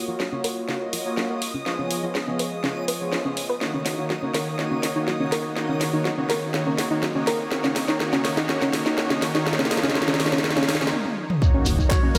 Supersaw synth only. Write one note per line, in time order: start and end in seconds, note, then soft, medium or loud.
0.08 0.20 A#3 medium
0.08 0.20 F4 medium
0.08 0.20 F#4 medium
0.08 0.20 C#5 loud
0.32 0.66 A#3 medium
0.32 0.66 F4 medium
0.32 0.66 F#4 medium
0.32 0.66 C#5 medium
0.69 1.03 A#3 medium
0.69 1.03 F4 medium
0.69 1.03 F#4 medium
0.69 1.03 C#5 medium
1.05 1.27 A#3 loud
1.05 1.27 F4 medium
1.05 1.27 F#4 medium
1.05 1.27 C#5 loud
1.30 1.42 A#3 medium
1.30 1.42 F4 medium
1.30 1.42 F#4 medium
1.30 1.42 C#5 medium
1.66 2.00 F3 medium
1.66 2.00 B3 medium
1.66 2.00 F4 medium
1.66 2.00 G#4 medium
1.66 2.00 C#5 loud
2.03 2.15 F3 medium
2.03 2.15 B3 medium
2.03 2.15 F4 medium
2.03 2.15 G#4 medium
2.03 2.15 C#5 medium
2.27 2.61 F3 medium
2.27 2.61 B3 medium
2.27 2.61 F4 medium
2.27 2.61 G#4 medium
2.27 2.61 C#5 medium
2.64 2.98 F3 medium
2.64 2.98 B3 medium
2.64 2.98 F4 medium
2.64 2.98 G#4 medium
2.64 2.98 C#5 medium
3.01 3.22 F3 loud
3.01 3.22 B3 medium
3.01 3.22 F4 medium
3.01 3.22 G#4 medium
3.01 3.22 C#5 loud
3.25 3.37 F3 medium
3.25 3.37 B3 medium
3.25 3.37 F4 medium
3.25 3.37 G#4 medium
3.25 3.37 C#5 loud
3.61 3.95 D#3 medium
3.61 3.95 A#3 medium
3.61 3.95 D#4 medium
3.61 3.95 F#4 medium
3.61 3.95 C#5 medium
3.98 4.10 D#3 medium
3.98 4.10 A#3 medium
3.98 4.10 D#4 medium
3.98 4.10 F#4 medium
3.98 4.10 C#5 medium
4.23 4.56 D#3 medium
4.23 4.56 A#3 medium
4.23 4.56 D#4 medium
4.23 4.56 F#4 medium
4.23 4.56 C#5 medium
4.59 4.93 D#3 medium
4.59 4.93 A#3 medium
4.59 4.93 D#4 medium
4.59 4.93 F#4 medium
4.59 4.93 C#5 medium
4.96 5.08 D#3 medium
4.96 5.08 A#3 medium
4.96 5.08 D#4 medium
4.96 5.08 F#4 medium
4.96 5.08 C#5 medium
5.20 5.54 D#3 medium
5.20 5.54 A#3 medium
5.20 5.54 D#4 medium
5.20 5.54 F#4 medium
5.20 5.54 C#5 medium
5.56 5.90 D#3 medium
5.56 5.90 A#3 medium
5.56 5.90 D#4 medium
5.56 5.90 F#4 medium
5.56 5.90 C#5 medium
5.93 6.05 D#3 medium
5.93 6.05 A#3 medium
5.93 6.05 D#4 medium
5.93 6.05 F#4 medium
5.93 6.05 C#5 medium
6.18 6.51 D#3 medium
6.18 6.51 A#3 medium
6.18 6.51 D#4 medium
6.18 6.51 F#4 medium
6.18 6.51 C#5 medium
6.54 6.88 D#3 medium
6.54 6.88 A#3 medium
6.54 6.88 D#4 medium
6.54 6.88 F#4 medium
6.54 6.88 C#5 medium
6.91 7.03 D#3 medium
6.91 7.03 A#3 medium
6.91 7.03 D#4 medium
6.91 7.03 F#4 medium
6.91 7.03 C#5 loud
7.15 7.49 D#3 medium
7.15 7.49 A#3 medium
7.15 7.49 D#4 medium
7.15 7.49 F#4 medium
7.15 7.49 C#5 medium
7.52 7.85 D#3 medium
7.52 7.85 A#3 medium
7.52 7.85 D#4 medium
7.52 7.85 F#4 medium
7.52 7.85 C#5 medium
7.88 7.98 D#3 medium
7.88 7.98 A#3 medium
7.88 7.98 D#4 medium
7.88 7.98 F#4 medium
7.88 7.98 C#5 medium
8.00 8.34 D#3 medium
8.00 8.34 A#3 medium
8.00 8.34 D#4 medium
8.00 8.34 F#4 medium
8.00 8.34 C#5 medium
8.37 8.47 D#3 medium
8.37 8.47 A#3 medium
8.37 8.47 D#4 medium
8.37 8.47 F#4 medium
8.37 8.47 C#5 loud
8.49 8.83 D#3 medium
8.49 8.83 A#3 medium
8.49 8.83 D#4 medium
8.49 8.83 F#4 medium
8.49 8.83 C#5 medium
8.86 8.96 D#3 medium
8.86 8.96 A#3 medium
8.86 8.96 D#4 medium
8.86 8.96 F#4 medium
8.86 8.96 C#5 loud
8.98 9.32 D#3 medium
8.98 9.32 A#3 medium
8.98 9.32 D#4 medium
8.98 9.32 F#4 medium
8.98 9.32 C#5 loud
9.35 9.45 D#3 loud
9.35 9.45 A#3 medium
9.35 9.45 D#4 medium
9.35 9.45 F#4 medium
9.35 9.45 C#5 loud
9.47 9.69 D#3 medium
9.47 9.69 A#3 medium
9.47 9.69 D#4 medium
9.47 9.69 F4 medium
9.47 9.69 C#5 medium
9.71 9.94 D#3 medium
9.71 9.94 A#3 medium
9.71 9.94 D#4 medium
9.71 9.94 F4 medium
9.71 9.94 C#5 medium
9.95 10.18 D#3 medium
9.95 10.18 A#3 medium
9.95 10.18 D#4 medium
9.95 10.18 F4 medium
9.95 10.18 C#5 loud
10.20 10.42 D#3 medium
10.20 10.42 A#3 medium
10.20 10.42 D#4 medium
10.20 10.42 F4 medium
10.20 10.42 C#5 loud
10.44 10.67 D#3 medium
10.44 10.67 A#3 medium
10.44 10.67 D#4 medium
10.44 10.67 F4 medium
10.44 10.67 C#5 loud
10.69 10.91 D#3 medium
10.69 10.91 A#3 medium
10.69 10.91 D#4 medium
10.69 10.91 F4 medium
10.69 10.91 C#5 loud
11.42 11.76 D#3 medium
11.42 11.76 A#3 medium
11.42 11.76 D#4 medium
11.42 11.76 F#4 medium
11.42 11.76 C#5 medium
11.79 11.90 D#3 medium
11.79 11.90 A#3 medium
11.79 11.90 D#4 medium
11.79 11.90 F#4 medium
11.79 11.90 C#5 medium
12.03 12.18 D#3 medium
12.03 12.18 A#3 medium
12.03 12.18 D#4 medium
12.03 12.18 F#4 medium
12.03 12.18 C#5 medium